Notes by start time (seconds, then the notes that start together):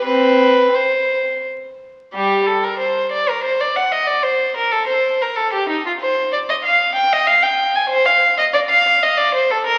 0.05 C4 B4
0.74 C5
2.14 G3 G4
2.47 A4
2.64 A#4
2.79 C5
3.12 D5
3.30 A#4
3.44 C5
3.60 D5
3.76 F#5
3.92 D#5
4.07 D5
4.23 C5
4.57 A#4
4.72 A4
4.87 C5
5.22 A#4
5.36 A4
5.53 G4
5.69 D#4
5.86 F4
6.01 C5
6.33 D5
6.49 D#5
6.64 F5
6.95 G5
7.13 D#5
7.27 F5
7.43 G5
7.75 G#5
7.90 C5
8.06 F5
8.38 D#5
8.53 D5
8.70 F5
9.03 D#5
9.17 D5
9.35 C5
9.51 A4
9.67 A#4